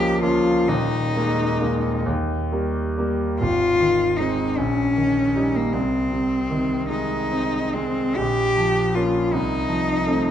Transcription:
Already playing: C#2 F3 A#3 C#4 G4
0.22 F3 A#3 C#4 F4
0.68 D#1 D#2 D#4
1.16 G#3 A#3
1.61 G#3 A#3
2.06 D#2
2.52 G3 A#3
2.98 G3 A#3
3.39 G#1 F4
3.81 D#3
4.17 G#3 C4 D#4
4.58 A#1 C#4
4.96 D#3
5.35 G3 D#4
5.56 A#3
5.73 C2 C4
6.11 C3
6.50 D#3
6.89 G#3 D#4
7.31 C4
7.73 G#3 C4
8.17 A#1 G4
8.57 F3
8.95 A#3 C#4 F4
9.33 C2 D#4
9.69 F3
10.07 A3 C4

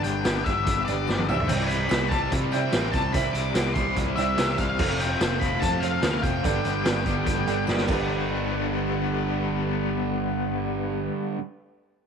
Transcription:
Already playing: G2 D3 D4 G4 B4 D5
0.03 G1 G3 B3 D4 G4 G5, closed hi-hat, tambourine
0.24 G1 G3 B3 D4 G4, snare, closed hi-hat, tambourine
0.44 G1 G3 B3 D4 G4 E5, kick, closed hi-hat, tambourine
0.66 G1, kick, closed hi-hat
0.85 G1 B3 D4 G4 D5, closed hi-hat, tambourine
0.89 G3 B4
1.07 G1 G2 D3 G3 B3 D4 G4, snare, tambourine
1.18 high tom
1.27 C2 C3 E3 G3 C4 E4 G4 C5 D5 E5, mid tom, tambourine
1.40 floor tom
1.48 C2 C3 E3 G3 C4 E4 G5, closed hi-hat, crash, tambourine
1.68 E4 B5, closed hi-hat, tambourine
1.72 G3 C4
1.89 E3 G3, closed hi-hat, tambourine
1.91 C2 C4 E4, snare, tambourine
2.09 C4 E4 A5, kick, closed hi-hat
2.13 C3 G3
2.32 C3, kick, closed hi-hat, tambourine
2.52 C4 E4 G4 C5 D5 G5, closed hi-hat, tambourine
2.56 G3
2.72 A1 C3 E3 G3 C4 E4, snare, closed hi-hat, tambourine
2.92 C2 A5, kick, closed hi-hat, tambourine
3.13 C2 C3 E3 G3 C4 E4 G4 C5 E5 B5, kick, closed hi-hat, tambourine
3.33 C2 G3 C4 E4 D6, closed hi-hat, tambourine
3.53 C2 E3 G3 C4 E4, snare, closed hi-hat, tambourine
3.74 C2 G3 C4 E4 C6, kick, closed hi-hat
3.78 C3
3.96 C2, kick, closed hi-hat
4.16 C2 G3 C4 E4 G4 C5 D5 E5, closed hi-hat, tambourine
4.36 C2 C3 E3 G3 C4 E4, snare, closed hi-hat, tambourine
4.58 C2 F5, kick, closed hi-hat, tambourine
4.78 F1 F2 C3 F3 A3 C4 F4 A4 C5 F5, kick, crash, tambourine
4.99 F3 A3 C4 F4 G5, closed hi-hat, tambourine
5.20 F1 F3 A3 C4 F4, snare, closed hi-hat, tambourine
5.40 F2 C3 F3 A3 C4 F4 B5, kick, closed hi-hat
5.44 F3
5.60 F2 A5, kick, closed hi-hat
5.80 C4 F4 A4 C5 F5, closed hi-hat, tambourine
5.85 F3 A3
6.02 D2 F2 C3 F3, snare, closed hi-hat, tambourine
6.04 A3 C4 F4, tambourine
6.23 F1 G5, kick, closed hi-hat, tambourine
6.43 G1 G2 D3 G3 B3 D4 G4 A4 B4 D5, kick, closed hi-hat, tambourine
6.64 G1 G3 B3 D4 G4, closed hi-hat, tambourine
6.84 G1 G3 B3 D4 G4, snare, closed hi-hat, tambourine
7.05 G1 G2 D3 G3 B3 D4 G4, kick, closed hi-hat, tambourine
7.26 G1, kick, closed hi-hat
7.46 G1 G3 B3 D4 G4 A4 B4 D5, closed hi-hat, tambourine
7.67 G1 G2 D3 G3 B3 D4 G4, snare, tambourine
7.77 snare
7.86 G1 G2 D3 G3 B3 D4 G4 A4 B4 D5, kick, crash, tambourine
7.91 G3 B4

